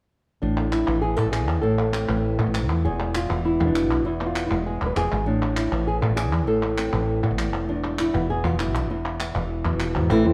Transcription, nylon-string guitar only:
0.42 1.18 A2 medium
0.42 1.03 D4 medium
0.58 1.62 A3 soft
0.72 1.01 E4 medium
0.88 2.08 E3 medium
1.02 1.17 G#4 medium
1.17 1.63 E2 medium
1.17 1.32 A4 medium
1.32 1.61 G#4 medium
1.49 1.62 C4 soft
1.62 2.39 A2 medium
1.62 2.23 A4 medium
1.79 2.08 A3 soft
1.92 2.84 C4 medium
2.09 3.18 E3 medium
2.09 2.39 A3 soft
2.39 2.54 E2 medium
2.39 2.83 A3 soft
2.54 2.69 G#2 soft
2.70 2.85 F2 medium
2.85 4.04 E2 medium
2.85 3.15 G#4 medium
3.01 3.59 G#3 soft
3.15 3.45 F4 medium
3.29 4.29 E3 medium
3.29 3.65 B3 soft
3.45 3.74 E4 medium
3.60 4.04 B2 medium
3.60 4.04 G#3 soft
3.65 4.06 D4 medium
3.75 4.05 E4 medium
4.05 4.80 E2 medium
4.05 4.45 E4 medium
4.21 4.50 B3 soft
4.26 4.46 F4 medium
4.46 5.25 G#3 medium
4.46 4.66 E4 medium
4.51 5.25 B3 soft
4.66 4.86 G#4 medium
4.81 4.95 E2 medium
4.86 4.96 B4 medium
4.96 5.11 F2 medium
4.96 5.27 G#4 loud
5.12 5.27 G#2 medium
5.26 6.02 A2 medium
5.26 5.72 D4 medium
5.57 5.87 E4 medium
5.72 6.93 E3 medium
5.72 6.32 C4 soft
5.87 6.01 G#4 medium
6.02 6.48 E2 medium
6.02 6.16 A4 medium
6.16 6.47 G#4 medium
6.33 6.46 C4 soft
6.47 7.23 A2 medium
6.47 7.08 A4 medium
6.63 7.23 A3 soft
6.78 7.53 C4 medium
6.93 7.72 E3 medium
7.24 7.68 E2 medium
7.24 7.38 A3 soft
7.39 7.67 A3 soft
7.54 7.67 C4 soft
7.69 8.89 E2 medium
7.69 8.14 D4 medium
7.84 8.88 G#3 soft
8.00 8.29 E4 medium
8.14 9.35 E3 medium
8.14 8.75 B3 soft
8.30 8.45 G#4 loud
8.45 8.88 B2 medium
8.45 8.60 F4 medium
8.60 8.89 E4 medium
8.75 9.20 D4 medium
8.90 9.80 E2 medium
8.90 10.11 E4 medium
9.21 10.11 B3 soft
9.36 10.09 E3 medium
9.65 10.09 B2 medium
9.80 9.95 F2 medium
9.95 10.10 G#2 soft
10.10 10.25 E3 medium
10.10 10.25 A3 medium
10.10 10.25 C4 medium
10.10 10.24 E4 medium
10.25 10.33 A3 soft
10.25 10.33 C4 medium
10.25 10.33 E4 medium

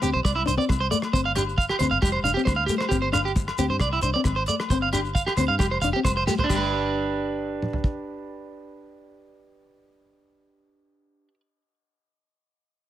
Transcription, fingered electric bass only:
0.03 0.13 D2 medium
0.15 0.24 B1 medium
0.25 0.44 C2 medium
0.48 0.58 C2 medium
0.70 0.89 C2 loud
1.14 1.71 G1 medium
1.80 1.91 D2 medium
1.91 2.01 G1 medium
2.02 2.22 F1 medium
2.23 2.34 F1 medium
2.47 2.67 D2 loud
2.92 3.49 G1 medium
3.59 3.69 D2 medium
3.70 3.79 G2 medium
3.81 4.00 C2 loud
4.03 4.14 C2 medium
4.25 4.45 G#1 loud
4.70 5.28 G1 medium
5.37 5.47 D2 medium
5.49 5.58 G2 medium
5.60 5.79 F1 medium
5.83 5.93 F1 medium
6.05 6.24 F1 loud
6.50 11.34 G1 medium

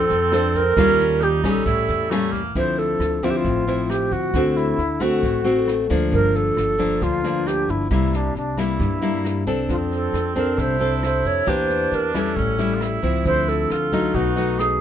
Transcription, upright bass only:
0.10 0.73 F2 medium
0.77 1.40 D#2 loud
1.44 1.64 A#1 medium
1.66 1.87 A1 medium
1.89 2.51 E2 medium
2.55 2.97 D2 medium
2.99 3.41 D2 medium
3.45 4.08 A1 medium
4.11 4.32 D2 medium
4.34 4.75 D2 medium
4.78 5.20 D2 medium
5.23 5.86 A1 medium
5.90 6.11 D2 medium
6.12 6.54 G1 medium
6.56 6.98 G1 medium
7.02 7.65 D2 medium
7.68 7.89 G1 medium
7.91 8.32 C2 medium
8.35 8.77 C2 medium
8.80 9.43 G2 medium
9.47 9.67 C2 medium
9.69 10.10 F2 medium
10.13 10.55 F2 medium
10.58 11.21 C2 medium
11.25 11.46 F2 medium
11.47 11.89 E2 medium
11.92 12.33 E2 medium
12.37 13.00 A1 medium
13.03 13.24 C#2 medium
13.25 13.67 D2 medium
13.71 14.12 D2 medium
14.14 14.78 B1 medium

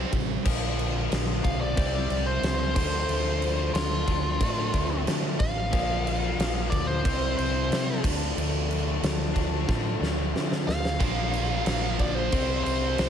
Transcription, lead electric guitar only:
1.44 1.60 F5 medium
1.61 2.25 D5 medium
2.26 2.58 C5 medium
2.59 2.74 C5 loud
2.75 3.71 C5 loud
3.74 5.02 F4 loud
5.39 6.67 F5 loud
6.70 6.87 D5 loud
6.87 7.35 C5 loud
7.37 8.01 C5 loud
10.67 11.96 F5 loud
12.00 12.15 D5 loud
12.15 12.62 C5 medium
12.63 13.09 C5 loud

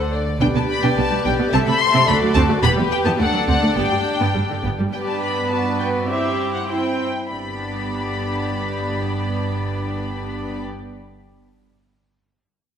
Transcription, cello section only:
0.00 0.19 D3 medium
0.41 0.47 B2 medium
0.55 0.61 B2 medium
0.84 0.89 B2 medium
0.98 1.03 B2 soft
1.11 1.17 B2 medium
1.25 1.31 B2 medium
1.39 1.45 B2 medium
1.53 1.58 C3 medium
1.67 1.72 C3 medium
1.94 2.00 C3 medium
2.08 2.14 D2 medium
2.22 2.27 D2 medium
2.36 2.41 D2 medium
2.50 2.55 D2 medium
2.64 2.69 E2 medium
2.78 2.83 E2 medium
3.06 3.11 E2 medium
3.20 3.25 D2 medium
3.34 3.40 D2 medium
3.48 3.54 D2 medium
3.63 3.69 D2 soft
3.77 3.83 G2 medium
3.92 3.98 G2 medium
4.21 4.27 G2 medium
4.36 4.42 G2 soft
4.51 4.56 G2 soft
4.65 4.71 G2 medium
4.80 4.85 G2 soft
4.94 6.04 B4 medium
6.08 6.68 G4 medium
6.68 6.99 E4 soft
7.31 10.60 G2 soft

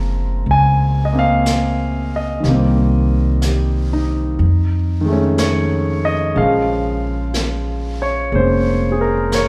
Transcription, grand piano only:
0.00 2.42 F3 soft
0.00 2.44 G#3 soft
0.00 1.11 A#3 soft
0.00 1.14 C4 soft
0.00 0.53 A#5 medium
0.51 1.06 G#5 medium
1.05 1.13 D#5 medium
1.13 2.44 A#3 soft
1.13 2.45 C4 soft
1.19 2.17 F5 medium
2.16 5.04 D#5 medium
2.40 4.38 D#3 soft
2.40 4.40 G3 soft
2.48 4.42 A#3 soft
2.48 4.44 C4 soft
3.44 4.20 G4 soft
3.93 4.62 D#4 soft
5.01 6.34 D#3 soft
5.05 6.36 G#3 soft
5.05 6.38 A3 soft
5.12 6.40 C#4 medium
5.39 6.05 C#5 medium
6.05 6.38 D#5 medium
6.35 9.48 C#3 soft
6.35 9.48 F3 soft
6.35 8.31 G#3 soft
6.35 7.96 F5 medium
8.02 8.32 C#5 medium
8.32 9.48 G#3 soft
8.32 9.48 A#3 soft
8.32 9.48 C#4 soft
8.32 8.91 C5 medium
8.92 8.99 G#4 soft
9.01 9.31 A#4 medium
9.35 9.48 C#5 medium

